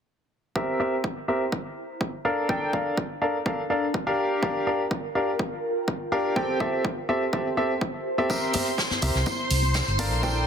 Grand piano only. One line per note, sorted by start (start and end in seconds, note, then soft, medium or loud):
0.56 0.77 C4 medium
0.56 0.77 G4 medium
0.56 0.77 A#4 medium
0.56 0.77 E5 medium
0.80 0.93 C4 medium
0.80 0.93 G4 medium
0.80 0.93 A#4 medium
0.80 0.93 E5 medium
1.28 1.42 C4 medium
1.28 1.42 G4 medium
1.28 1.42 A#4 medium
1.28 1.42 E5 medium
2.25 2.46 D4 medium
2.25 2.46 A4 medium
2.25 2.46 A#4 medium
2.25 2.46 F5 medium
2.49 2.70 D4 medium
2.49 2.70 A4 medium
2.49 2.70 A#4 medium
2.49 2.70 G5 medium
2.73 2.95 D4 medium
2.73 2.95 A4 medium
2.73 2.95 A#4 medium
2.73 2.95 F5 medium
3.22 3.35 D4 medium
3.22 3.35 A4 medium
3.22 3.35 A#4 medium
3.22 3.35 F5 medium
3.46 3.60 D4 medium
3.46 3.60 A4 medium
3.46 3.60 A#4 medium
3.46 3.60 F5 medium
3.70 3.84 D4 medium
3.70 3.84 A4 medium
3.70 3.84 A#4 medium
3.70 3.84 F5 medium
4.07 4.40 D4 medium
4.07 4.40 G4 medium
4.07 4.40 A#4 medium
4.07 4.40 F5 loud
4.43 4.64 D4 medium
4.43 4.64 G4 medium
4.43 4.64 A#4 medium
4.43 4.64 F5 medium
4.67 4.81 D4 medium
4.67 4.81 G4 medium
4.67 4.81 A#4 medium
4.67 4.81 F5 medium
5.15 5.29 D4 medium
5.15 5.29 G4 medium
5.15 5.29 A#4 medium
5.15 5.29 F5 medium
6.12 6.33 D4 medium
6.12 6.33 G4 medium
6.12 6.33 A#4 medium
6.12 6.33 F5 medium
6.36 6.57 C4 medium
6.36 6.57 G4 medium
6.36 6.57 A4 medium
6.36 6.57 G5 medium
6.60 6.82 C4 medium
6.60 6.82 G4 medium
6.60 6.82 A4 medium
6.60 6.82 E5 medium
7.09 7.23 C4 medium
7.09 7.23 G4 medium
7.09 7.23 A4 medium
7.09 7.23 E5 medium
7.33 7.47 C4 medium
7.33 7.47 G4 medium
7.33 7.47 A4 medium
7.33 7.47 E5 medium
7.57 7.71 C4 medium
7.57 7.71 G4 medium
7.57 7.71 A4 medium
7.57 7.71 E5 medium
8.18 8.28 C4 medium
8.18 8.28 G4 medium
8.18 8.28 A4 medium
8.18 8.28 E5 medium
8.30 8.51 C4 medium
8.30 8.51 G4 medium
8.30 8.51 A#4 medium
8.30 8.51 E5 medium
8.54 8.68 C4 medium
8.54 8.68 G4 medium
8.54 8.68 A#4 medium
8.54 8.68 E5 medium
9.02 9.16 C4 medium
9.02 9.16 G4 medium
9.02 9.16 A#4 medium
9.02 9.16 E5 medium
9.99 10.20 D4 medium
9.99 10.20 A4 medium
9.99 10.20 A#4 medium
9.99 10.20 F5 medium
10.23 10.44 D4 medium
10.23 10.44 A4 medium
10.23 10.44 A#4 medium
10.23 10.44 G5 loud